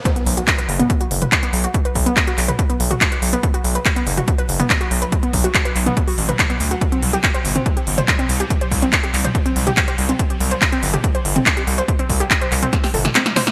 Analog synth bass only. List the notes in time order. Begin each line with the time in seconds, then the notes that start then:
0.26 B1
0.69 F#1
1.11 F#1
1.53 B1
1.95 B1
2.38 B1
2.80 B1
3.22 B1
3.64 B1
4.07 F#1
4.49 F#1
4.91 B1
5.33 B1
5.76 B1
6.18 A1
6.60 D2
7.02 C2
7.45 G1
7.87 G1
8.29 C2
8.71 C2
9.14 C2
9.56 C2
9.98 C2
10.40 C2
10.83 G1
11.25 G1
11.67 C2
12.10 C2
12.52 C2
12.94 G1